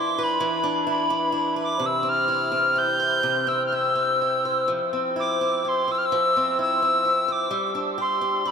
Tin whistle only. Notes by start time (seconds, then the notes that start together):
0.00 D6
0.23 B5
0.90 B5
1.63 D6
1.86 E6
2.09 F6
2.78 G6
3.48 E6
3.66 F6
3.74 E6
5.20 D6
5.68 C6
5.91 E6
5.98 F6
6.05 E6
6.61 E6
7.32 D6
8.01 C6
8.47 B5